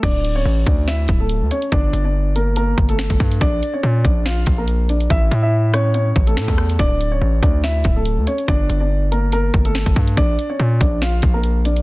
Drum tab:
CC |x---------------|----------------|----------------|----------------|
HH |x-x---x---x-x-xx|x-x---x-x--x-x-x|x-x---x---x-x-xx|x-x---x-x--xxx-x|
SD |--------o-------|------------o---|--------o-------|------r-----o-r-|
BD |o-----o---o-----|o---------o--oo-|o-----o---o-----|o---------o--o--|

CC |----------------|----------------|----------------|
HH |x-x---x---x-x-xx|x-x---x-x--x-x-x|x-x---x---x-x-xx|
SD |--------o-------|------------o---|--------o-------|
BD |o-----o---o-----|o---------o--oo-|o-----o---o-----|